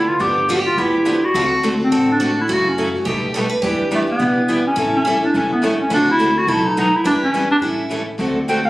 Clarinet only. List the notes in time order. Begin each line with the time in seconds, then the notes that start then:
0.08 F4
0.21 G4
0.66 F4
0.78 E4
1.25 F#4
1.82 C4
2.12 D4
2.41 E4
2.53 F#4
2.68 C#4
3.95 A3
4.11 B3
4.67 C#4
4.96 C#4
5.25 D4
5.35 C#4
5.53 B3
5.64 A3
5.81 C#4
5.94 D4
6.11 E4
6.38 F#4
6.49 E4
6.66 D#4
6.79 D#4
6.95 E4
7.06 D4
7.23 C#4
7.51 D4
7.63 C#4
8.48 G5
8.65 F5